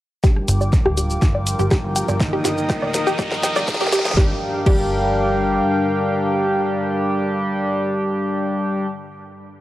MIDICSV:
0, 0, Header, 1, 8, 480
1, 0, Start_track
1, 0, Key_signature, -2, "minor"
1, 0, Tempo, 491803
1, 231, Time_signature, 4, 2, 24, 8
1, 9376, End_track
2, 0, Start_track
2, 0, Title_t, "Analog synth pad"
2, 0, Program_c, 0, 89
2, 231, Note_on_c, 0, 65, 75
2, 231, Note_on_c, 0, 70, 70
2, 231, Note_on_c, 0, 79, 72
2, 232, Note_on_c, 0, 86, 86
2, 2132, Note_off_c, 0, 65, 0
2, 2132, Note_off_c, 0, 86, 0
2, 2152, Note_on_c, 0, 75, 83
2, 2153, Note_on_c, 0, 87, 93
2, 4033, Note_off_c, 0, 70, 0
2, 4033, Note_off_c, 0, 79, 0
2, 4052, Note_off_c, 0, 75, 0
2, 4053, Note_off_c, 0, 87, 0
2, 4069, Note_on_c, 0, 79, 92
2, 4070, Note_on_c, 0, 62, 85
2, 4070, Note_on_c, 0, 67, 79
2, 4070, Note_on_c, 0, 70, 75
2, 4070, Note_on_c, 0, 77, 76
2, 8413, Note_off_c, 0, 62, 0
2, 8413, Note_off_c, 0, 67, 0
2, 8413, Note_off_c, 0, 79, 0
2, 8414, Note_off_c, 0, 70, 0
2, 8414, Note_off_c, 0, 77, 0
2, 9376, End_track
3, 0, Start_track
3, 0, Title_t, "Synth arpeggio sound"
3, 0, Program_c, 1, 84
3, 230, Note_on_c, 1, 67, 84
3, 289, Note_off_c, 1, 67, 0
3, 470, Note_on_c, 1, 79, 75
3, 529, Note_off_c, 1, 79, 0
3, 595, Note_on_c, 1, 74, 72
3, 649, Note_off_c, 1, 74, 0
3, 836, Note_on_c, 1, 67, 93
3, 890, Note_off_c, 1, 67, 0
3, 951, Note_on_c, 1, 67, 75
3, 1009, Note_off_c, 1, 67, 0
3, 1192, Note_on_c, 1, 79, 81
3, 1249, Note_off_c, 1, 79, 0
3, 1316, Note_on_c, 1, 74, 73
3, 1370, Note_off_c, 1, 74, 0
3, 1555, Note_on_c, 1, 67, 98
3, 1609, Note_off_c, 1, 67, 0
3, 1671, Note_on_c, 1, 67, 83
3, 1729, Note_off_c, 1, 67, 0
3, 1911, Note_on_c, 1, 79, 77
3, 1969, Note_off_c, 1, 79, 0
3, 2034, Note_on_c, 1, 74, 75
3, 2089, Note_off_c, 1, 74, 0
3, 2274, Note_on_c, 1, 67, 97
3, 2329, Note_off_c, 1, 67, 0
3, 2390, Note_on_c, 1, 67, 81
3, 2449, Note_off_c, 1, 67, 0
3, 2631, Note_on_c, 1, 79, 82
3, 2689, Note_off_c, 1, 79, 0
3, 2756, Note_on_c, 1, 74, 77
3, 2810, Note_off_c, 1, 74, 0
3, 2995, Note_on_c, 1, 67, 104
3, 3049, Note_off_c, 1, 67, 0
3, 3110, Note_on_c, 1, 67, 80
3, 3169, Note_off_c, 1, 67, 0
3, 3351, Note_on_c, 1, 79, 79
3, 3409, Note_off_c, 1, 79, 0
3, 3476, Note_on_c, 1, 74, 78
3, 3530, Note_off_c, 1, 74, 0
3, 3716, Note_on_c, 1, 67, 98
3, 3770, Note_off_c, 1, 67, 0
3, 3831, Note_on_c, 1, 67, 81
3, 3889, Note_off_c, 1, 67, 0
3, 4071, Note_on_c, 1, 67, 96
3, 4208, Note_off_c, 1, 67, 0
3, 4552, Note_on_c, 1, 67, 100
3, 4689, Note_off_c, 1, 67, 0
3, 9376, End_track
4, 0, Start_track
4, 0, Title_t, "Analog polysynth"
4, 0, Program_c, 2, 90
4, 231, Note_on_c, 2, 55, 96
4, 231, Note_on_c, 2, 62, 85
4, 231, Note_on_c, 2, 67, 102
4, 923, Note_off_c, 2, 55, 0
4, 923, Note_off_c, 2, 62, 0
4, 923, Note_off_c, 2, 67, 0
4, 950, Note_on_c, 2, 55, 69
4, 950, Note_on_c, 2, 62, 66
4, 950, Note_on_c, 2, 67, 77
4, 2123, Note_off_c, 2, 55, 0
4, 2123, Note_off_c, 2, 62, 0
4, 2123, Note_off_c, 2, 67, 0
4, 2151, Note_on_c, 2, 51, 93
4, 2151, Note_on_c, 2, 58, 87
4, 2151, Note_on_c, 2, 63, 109
4, 2843, Note_off_c, 2, 51, 0
4, 2843, Note_off_c, 2, 58, 0
4, 2843, Note_off_c, 2, 63, 0
4, 2871, Note_on_c, 2, 51, 73
4, 2871, Note_on_c, 2, 63, 79
4, 2872, Note_on_c, 2, 58, 67
4, 4043, Note_off_c, 2, 51, 0
4, 4043, Note_off_c, 2, 63, 0
4, 4044, Note_off_c, 2, 58, 0
4, 4071, Note_on_c, 2, 55, 87
4, 4071, Note_on_c, 2, 62, 82
4, 4071, Note_on_c, 2, 67, 94
4, 4208, Note_off_c, 2, 55, 0
4, 4208, Note_off_c, 2, 62, 0
4, 4208, Note_off_c, 2, 67, 0
4, 4551, Note_on_c, 2, 55, 87
4, 4551, Note_on_c, 2, 62, 80
4, 4551, Note_on_c, 2, 67, 99
4, 8653, Note_off_c, 2, 55, 0
4, 8653, Note_off_c, 2, 62, 0
4, 8653, Note_off_c, 2, 67, 0
4, 9376, End_track
5, 0, Start_track
5, 0, Title_t, "Synth drone"
5, 0, Program_c, 3, 95
5, 230, Note_on_c, 3, 43, 71
5, 230, Note_on_c, 3, 53, 70
5, 4061, Note_off_c, 3, 43, 0
5, 4073, Note_on_c, 3, 43, 71
5, 4073, Note_on_c, 3, 50, 75
5, 4120, Note_off_c, 3, 53, 0
5, 8416, Note_off_c, 3, 43, 0
5, 8416, Note_off_c, 3, 50, 0
5, 9376, End_track
6, 0, Start_track
6, 0, Title_t, "Analog synth bass"
6, 0, Program_c, 4, 38
6, 471, Note_on_c, 4, 31, 98
6, 791, Note_off_c, 4, 31, 0
6, 835, Note_on_c, 4, 26, 98
6, 1150, Note_off_c, 4, 26, 0
6, 1191, Note_on_c, 4, 31, 94
6, 1511, Note_off_c, 4, 31, 0
6, 1556, Note_on_c, 4, 31, 87
6, 1645, Note_off_c, 4, 31, 0
6, 1796, Note_on_c, 4, 31, 87
6, 1980, Note_off_c, 4, 31, 0
6, 2036, Note_on_c, 4, 31, 106
6, 2350, Note_off_c, 4, 31, 0
6, 2391, Note_on_c, 4, 31, 98
6, 2711, Note_off_c, 4, 31, 0
6, 2755, Note_on_c, 4, 26, 103
6, 3070, Note_off_c, 4, 26, 0
6, 3111, Note_on_c, 4, 31, 99
6, 3431, Note_off_c, 4, 31, 0
6, 3475, Note_on_c, 4, 31, 90
6, 3565, Note_off_c, 4, 31, 0
6, 3715, Note_on_c, 4, 31, 91
6, 3900, Note_off_c, 4, 31, 0
6, 3956, Note_on_c, 4, 31, 111
6, 4046, Note_off_c, 4, 31, 0
6, 4071, Note_on_c, 4, 31, 92
6, 4208, Note_off_c, 4, 31, 0
6, 4551, Note_on_c, 4, 31, 96
6, 5472, Note_off_c, 4, 31, 0
6, 9376, End_track
7, 0, Start_track
7, 0, Title_t, "Riser"
7, 0, Program_c, 5, 103
7, 231, Note_on_c, 5, 60, 74
7, 4071, Note_off_c, 5, 60, 0
7, 9376, End_track
8, 0, Start_track
8, 0, Title_t, "Drums"
8, 231, Note_on_c, 9, 36, 110
8, 231, Note_on_c, 9, 38, 50
8, 231, Note_on_c, 9, 82, 45
8, 329, Note_off_c, 9, 36, 0
8, 329, Note_off_c, 9, 38, 0
8, 329, Note_off_c, 9, 82, 0
8, 355, Note_on_c, 9, 37, 48
8, 453, Note_off_c, 9, 37, 0
8, 471, Note_on_c, 9, 42, 101
8, 471, Note_on_c, 9, 82, 78
8, 569, Note_off_c, 9, 42, 0
8, 569, Note_off_c, 9, 82, 0
8, 596, Note_on_c, 9, 82, 31
8, 693, Note_off_c, 9, 82, 0
8, 711, Note_on_c, 9, 36, 113
8, 712, Note_on_c, 9, 38, 48
8, 712, Note_on_c, 9, 82, 43
8, 808, Note_off_c, 9, 36, 0
8, 809, Note_off_c, 9, 38, 0
8, 809, Note_off_c, 9, 82, 0
8, 836, Note_on_c, 9, 37, 73
8, 933, Note_off_c, 9, 37, 0
8, 951, Note_on_c, 9, 42, 104
8, 951, Note_on_c, 9, 82, 75
8, 1049, Note_off_c, 9, 42, 0
8, 1049, Note_off_c, 9, 82, 0
8, 1076, Note_on_c, 9, 82, 33
8, 1173, Note_off_c, 9, 82, 0
8, 1191, Note_on_c, 9, 36, 115
8, 1192, Note_on_c, 9, 37, 50
8, 1192, Note_on_c, 9, 38, 61
8, 1192, Note_on_c, 9, 82, 46
8, 1289, Note_off_c, 9, 36, 0
8, 1289, Note_off_c, 9, 37, 0
8, 1289, Note_off_c, 9, 38, 0
8, 1289, Note_off_c, 9, 82, 0
8, 1432, Note_on_c, 9, 42, 102
8, 1432, Note_on_c, 9, 82, 76
8, 1530, Note_off_c, 9, 42, 0
8, 1530, Note_off_c, 9, 82, 0
8, 1556, Note_on_c, 9, 82, 34
8, 1654, Note_off_c, 9, 82, 0
8, 1671, Note_on_c, 9, 36, 118
8, 1671, Note_on_c, 9, 37, 78
8, 1671, Note_on_c, 9, 38, 67
8, 1671, Note_on_c, 9, 82, 47
8, 1769, Note_off_c, 9, 36, 0
8, 1769, Note_off_c, 9, 37, 0
8, 1769, Note_off_c, 9, 38, 0
8, 1769, Note_off_c, 9, 82, 0
8, 1911, Note_on_c, 9, 42, 95
8, 1911, Note_on_c, 9, 82, 76
8, 2009, Note_off_c, 9, 42, 0
8, 2009, Note_off_c, 9, 82, 0
8, 2035, Note_on_c, 9, 37, 47
8, 2035, Note_on_c, 9, 82, 34
8, 2133, Note_off_c, 9, 37, 0
8, 2133, Note_off_c, 9, 82, 0
8, 2151, Note_on_c, 9, 36, 121
8, 2151, Note_on_c, 9, 38, 74
8, 2151, Note_on_c, 9, 82, 45
8, 2248, Note_off_c, 9, 38, 0
8, 2248, Note_off_c, 9, 82, 0
8, 2249, Note_off_c, 9, 36, 0
8, 2391, Note_on_c, 9, 38, 78
8, 2391, Note_on_c, 9, 42, 109
8, 2391, Note_on_c, 9, 82, 82
8, 2489, Note_off_c, 9, 38, 0
8, 2489, Note_off_c, 9, 42, 0
8, 2489, Note_off_c, 9, 82, 0
8, 2516, Note_on_c, 9, 82, 34
8, 2613, Note_off_c, 9, 82, 0
8, 2631, Note_on_c, 9, 36, 121
8, 2631, Note_on_c, 9, 38, 75
8, 2631, Note_on_c, 9, 82, 43
8, 2729, Note_off_c, 9, 36, 0
8, 2729, Note_off_c, 9, 38, 0
8, 2729, Note_off_c, 9, 82, 0
8, 2871, Note_on_c, 9, 38, 85
8, 2871, Note_on_c, 9, 42, 110
8, 2871, Note_on_c, 9, 82, 76
8, 2969, Note_off_c, 9, 38, 0
8, 2969, Note_off_c, 9, 42, 0
8, 2969, Note_off_c, 9, 82, 0
8, 2996, Note_on_c, 9, 82, 32
8, 3094, Note_off_c, 9, 82, 0
8, 3111, Note_on_c, 9, 36, 119
8, 3111, Note_on_c, 9, 38, 91
8, 3111, Note_on_c, 9, 82, 46
8, 3209, Note_off_c, 9, 36, 0
8, 3209, Note_off_c, 9, 38, 0
8, 3209, Note_off_c, 9, 82, 0
8, 3236, Note_on_c, 9, 38, 83
8, 3333, Note_off_c, 9, 38, 0
8, 3352, Note_on_c, 9, 38, 101
8, 3352, Note_on_c, 9, 42, 112
8, 3352, Note_on_c, 9, 82, 77
8, 3449, Note_off_c, 9, 38, 0
8, 3449, Note_off_c, 9, 42, 0
8, 3449, Note_off_c, 9, 82, 0
8, 3476, Note_on_c, 9, 38, 84
8, 3476, Note_on_c, 9, 82, 33
8, 3573, Note_off_c, 9, 38, 0
8, 3573, Note_off_c, 9, 82, 0
8, 3591, Note_on_c, 9, 36, 124
8, 3592, Note_on_c, 9, 38, 107
8, 3592, Note_on_c, 9, 82, 49
8, 3653, Note_off_c, 9, 38, 0
8, 3653, Note_on_c, 9, 38, 95
8, 3689, Note_off_c, 9, 36, 0
8, 3689, Note_off_c, 9, 82, 0
8, 3715, Note_off_c, 9, 38, 0
8, 3715, Note_on_c, 9, 38, 94
8, 3773, Note_off_c, 9, 38, 0
8, 3773, Note_on_c, 9, 38, 100
8, 3831, Note_off_c, 9, 38, 0
8, 3831, Note_on_c, 9, 38, 101
8, 3831, Note_on_c, 9, 42, 103
8, 3831, Note_on_c, 9, 82, 78
8, 3892, Note_off_c, 9, 38, 0
8, 3892, Note_on_c, 9, 38, 89
8, 3928, Note_off_c, 9, 42, 0
8, 3928, Note_off_c, 9, 82, 0
8, 3955, Note_off_c, 9, 38, 0
8, 3955, Note_on_c, 9, 38, 92
8, 3955, Note_on_c, 9, 82, 34
8, 4013, Note_off_c, 9, 38, 0
8, 4013, Note_on_c, 9, 38, 95
8, 4053, Note_off_c, 9, 82, 0
8, 4071, Note_off_c, 9, 38, 0
8, 4071, Note_on_c, 9, 36, 113
8, 4071, Note_on_c, 9, 38, 86
8, 4168, Note_off_c, 9, 38, 0
8, 4169, Note_off_c, 9, 36, 0
8, 4551, Note_on_c, 9, 36, 114
8, 4551, Note_on_c, 9, 49, 87
8, 4648, Note_off_c, 9, 49, 0
8, 4649, Note_off_c, 9, 36, 0
8, 9376, End_track
0, 0, End_of_file